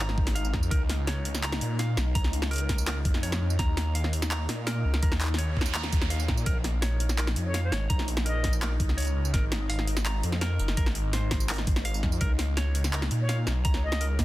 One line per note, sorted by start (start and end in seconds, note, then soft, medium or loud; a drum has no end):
0.00 0.17 G#1 loud
0.00 6.46 D#4 medium
0.00 6.46 D#5 medium
0.00 0.34 A#5 medium
0.09 snare soft
0.18 0.55 G#1 loud
0.18 kick loud
0.27 snare medium
0.27 closed hi-hat medium
0.35 0.53 F5 medium
0.35 closed hi-hat medium
0.45 tambourine soft
0.54 0.70 F2 loud
0.54 kick medium
0.54 snare soft
0.63 tambourine soft
0.71 1.60 C#2 loud
0.71 0.82 A#4 loud
0.71 kick loud
0.71 closed hi-hat medium
0.89 snare medium
0.89 closed hi-hat medium
1.07 1.41 C#5 medium
1.07 snare medium
1.07 closed hi-hat medium
1.25 closed hi-hat medium
1.35 snare medium
1.35 tambourine medium
1.43 1.77 A#5 medium
1.43 clap loud
1.43 closed hi-hat medium
1.52 snare medium
1.61 1.96 A#2 medium
1.61 closed hi-hat medium
1.79 1.96 F5 medium
1.79 snare soft
1.79 closed hi-hat medium
1.97 2.14 B1 loud
1.97 snare medium
1.97 tambourine soft
2.15 3.04 C#2 loud
2.15 2.32 A#5 medium
2.15 kick loud
2.15 closed hi-hat medium
2.24 snare medium
2.33 closed hi-hat medium
2.42 snare medium
2.51 2.85 A#4 medium
2.51 closed hi-hat soft
2.53 closed hi-hat soft
2.56 closed hi-hat medium
2.58 closed hi-hat medium
2.69 kick medium
2.69 snare medium
2.69 closed hi-hat medium
2.78 tambourine medium
2.87 2.97 A#4 loud
2.87 clap loud
2.87 snare medium
2.87 closed hi-hat medium
3.05 3.40 F2 loud
3.05 kick loud
3.05 closed hi-hat medium
3.14 snare medium
3.23 3.57 C#5 medium
3.23 closed hi-hat medium
3.32 snare medium
3.32 tambourine soft
3.41 3.58 F2 loud
3.50 tambourine soft
3.59 4.48 D#2 loud
3.59 3.93 A#5 medium
3.59 kick loud
3.59 snare medium
3.59 closed hi-hat medium
3.77 snare medium
3.77 closed hi-hat medium
3.95 4.12 F5 medium
3.95 closed hi-hat medium
4.04 snare medium
4.13 closed hi-hat medium
4.22 snare medium
4.22 tambourine medium
4.31 4.48 A#5 medium
4.31 clap loud
4.31 closed hi-hat medium
4.49 4.84 A#2 medium
4.49 snare medium
4.49 closed hi-hat medium
4.67 5.01 A#4 medium
4.67 snare medium
4.67 closed hi-hat medium
4.85 5.01 C#2 loud
4.94 snare medium
5.03 5.91 D#2 loud
5.03 5.13 A#4 loud
5.03 kick loud
5.03 closed hi-hat medium
5.03 noise sweep medium
5.12 snare medium
5.20 clap medium
5.20 closed hi-hat medium
5.23 clap soft
5.25 clap soft
5.27 clap soft
5.34 snare medium
5.38 5.73 C#5 medium
5.38 closed hi-hat medium
5.57 kick medium
5.61 snare medium
5.66 tambourine medium
5.74 6.09 A#5 medium
5.74 clap loud
5.74 closed hi-hat medium
5.83 snare medium
5.92 6.30 D#2 medium
5.92 kick loud
5.92 closed hi-hat medium
5.92 tambourine soft
6.01 snare medium
6.10 6.27 F5 medium
6.10 closed hi-hat medium
6.20 tambourine soft
6.28 6.45 A#2 loud
6.28 kick medium
6.28 snare medium
6.37 tambourine soft
6.46 7.35 A#1 loud
6.46 14.25 D#4 medium
6.46 6.57 A#4 loud
6.46 14.25 D#5 medium
6.46 kick loud
6.46 closed hi-hat medium
6.64 snare medium
6.64 closed hi-hat medium
6.82 7.16 C#5 medium
6.82 snare medium
6.82 closed hi-hat medium
7.00 closed hi-hat medium
7.09 snare medium
7.09 tambourine medium
7.18 7.29 A#4 medium
7.18 clap loud
7.18 closed hi-hat medium
7.27 snare medium
7.36 7.71 F2 medium
7.36 closed hi-hat medium
7.46 7.62 C#5 medium
7.54 7.71 F5 medium
7.54 snare medium
7.54 closed hi-hat medium
7.63 7.85 C#5 medium
7.72 7.89 G#1 loud
7.72 snare medium
7.72 tambourine soft
7.90 8.79 A#1 loud
7.90 8.07 A#5 medium
7.90 kick loud
7.90 closed hi-hat medium
7.99 snare medium
8.08 closed hi-hat medium
8.17 snare medium
8.26 8.60 A#4 medium
8.26 8.53 D#5 medium
8.26 closed hi-hat medium
8.44 kick medium
8.44 snare medium
8.44 closed hi-hat medium
8.53 tambourine medium
8.62 8.72 A#4 loud
8.62 clap loud
8.62 snare medium
8.62 closed hi-hat medium
8.80 9.15 C#2 loud
8.80 kick loud
8.80 closed hi-hat medium
8.89 snare medium
8.97 9.32 C#5 medium
8.97 closed hi-hat medium
9.00 closed hi-hat medium
9.02 closed hi-hat medium
9.05 closed hi-hat soft
9.05 tambourine soft
9.16 9.32 C#2 loud
9.25 tambourine soft
9.34 10.22 G#1 loud
9.34 9.44 A#4 medium
9.34 kick loud
9.34 snare medium
9.34 closed hi-hat medium
9.52 snare medium
9.52 closed hi-hat medium
9.70 9.87 F5 medium
9.70 closed hi-hat medium
9.79 snare medium
9.88 closed hi-hat medium
9.97 snare medium
9.97 tambourine medium
10.05 10.23 A#5 medium
10.05 clap loud
10.05 closed hi-hat medium
10.23 10.58 F2 medium
10.23 closed hi-hat medium
10.32 snare medium
10.41 10.76 A#4 medium
10.41 snare medium
10.41 closed hi-hat medium
10.59 10.76 F#1 loud
10.59 tambourine soft
10.68 snare medium
10.77 10.88 A#4 loud
10.77 kick loud
10.77 closed hi-hat medium
10.86 snare medium
10.95 closed hi-hat medium
11.13 11.47 C5 medium
11.13 snare soft
11.13 closed hi-hat medium
11.31 kick medium
11.31 snare medium
11.31 closed hi-hat medium
11.40 tambourine medium
11.49 11.60 A#4 medium
11.49 clap loud
11.49 closed hi-hat medium
11.51 closed hi-hat medium
11.54 closed hi-hat medium
11.56 snare soft
11.56 closed hi-hat soft
11.67 12.05 G#1 medium
11.67 kick loud
11.67 closed hi-hat medium
11.76 snare medium
11.85 12.02 F5 medium
11.85 closed hi-hat medium
11.94 tambourine soft
12.03 12.20 F2 loud
12.03 kick medium
12.03 snare soft
12.12 tambourine soft
12.21 13.10 C#2 loud
12.21 12.31 A#4 loud
12.21 kick loud
12.21 closed hi-hat medium
12.39 snare medium
12.39 closed hi-hat medium
12.57 12.91 C#5 medium
12.57 snare medium
12.57 closed hi-hat medium
12.75 closed hi-hat medium
12.84 snare medium
12.84 tambourine medium
12.93 13.03 A#4 medium
12.93 clap loud
12.93 closed hi-hat medium
13.02 snare medium
13.11 13.46 A#2 medium
13.11 closed hi-hat medium
13.20 13.36 C#5 loud
13.29 13.46 F5 medium
13.29 snare medium
13.29 closed hi-hat medium
13.47 13.64 B1 loud
13.47 snare medium
13.47 tambourine soft
13.65 14.25 C#2 loud
13.65 13.82 A#5 medium
13.65 kick loud
13.65 closed hi-hat medium
13.74 snare medium
13.83 14.05 D#5 medium
13.92 snare medium
14.01 14.17 A#4 medium
14.01 closed hi-hat medium
14.19 14.25 A#3 loud
14.19 14.25 D#5 medium
14.19 kick medium
14.19 snare medium
14.19 closed hi-hat medium